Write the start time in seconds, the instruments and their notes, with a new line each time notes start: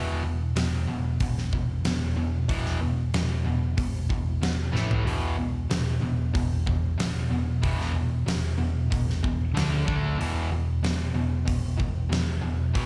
Already playing: picked electric bass E1, distorted electric guitar E2 B2 E3
0.23 picked electric bass E1, distorted electric guitar E2 B2
0.56 picked electric bass E1, distorted electric guitar E2 B2, snare, open hi-hat
0.88 picked electric bass E1, distorted electric guitar E2 B2
1.20 picked electric bass E1, distorted electric guitar E2 B2, kick, open hi-hat
1.38 snare
1.53 picked electric bass E1, distorted electric guitar E2 B2, kick
1.83 picked electric bass E1, distorted electric guitar E2 B2, snare, open hi-hat
2.16 picked electric bass E1, distorted electric guitar E2 B2
2.49 picked electric bass E1, distorted electric guitar E2 B2 E3, kick, open hi-hat
2.66 snare
2.81 picked electric bass E1, distorted electric guitar E2 B2
3.14 picked electric bass E1, distorted electric guitar E2 B2, snare, open hi-hat
3.45 picked electric bass E1, distorted electric guitar E2 B2
3.77 picked electric bass E1, distorted electric guitar E2 B2, kick, open hi-hat
4.09 picked electric bass E1, distorted electric guitar E2 B2, kick
4.40 picked electric bass E1, distorted electric guitar E2 B2, snare, open hi-hat
4.72 picked electric bass A1, distorted electric guitar A2 E3 A3, snare
4.91 floor tom
5.04 picked electric bass E1, distorted electric guitar E2 B2 E3, open hi-hat
5.38 picked electric bass E1, distorted electric guitar E2 B2
5.69 picked electric bass E1, distorted electric guitar E2 B2, snare, open hi-hat
6.01 picked electric bass E1, distorted electric guitar E2 B2
6.34 picked electric bass E1, distorted electric guitar E2 B2, kick, open hi-hat
6.66 picked electric bass E1, distorted electric guitar E2 B2, kick
6.98 picked electric bass E1, distorted electric guitar E2 B2, snare, open hi-hat
7.31 picked electric bass E1, distorted electric guitar E2 B2
7.62 picked electric bass E1, distorted electric guitar E2 B2 E3, kick, open hi-hat
7.81 snare
7.94 picked electric bass E1, distorted electric guitar E2 B2
8.26 picked electric bass E1, distorted electric guitar E2 B2, snare, open hi-hat
8.58 picked electric bass E1, distorted electric guitar E2 B2
8.91 picked electric bass E1, distorted electric guitar E2 B2, kick, open hi-hat
9.10 snare
9.23 picked electric bass E1, distorted electric guitar E2 B2, kick
9.53 picked electric bass D2, distorted electric guitar D3 A3 D4, snare, open hi-hat
9.86 picked electric bass D2, distorted electric guitar D3 A3 D4, kick
10.18 picked electric bass E1, distorted electric guitar E2 B2 E3, open hi-hat
10.50 picked electric bass E1, distorted electric guitar E2 B2
10.82 picked electric bass E1, distorted electric guitar E2 B2, snare, open hi-hat
11.14 picked electric bass E1, distorted electric guitar E2 B2
11.46 picked electric bass E1, distorted electric guitar E2 B2, kick, open hi-hat
11.78 picked electric bass E1, distorted electric guitar E2 B2, kick
12.10 picked electric bass E1, distorted electric guitar E2 B2, snare, open hi-hat
12.42 picked electric bass E1, distorted electric guitar E2 B2
12.74 picked electric bass E1, distorted electric guitar E2 B2 E3, kick, open hi-hat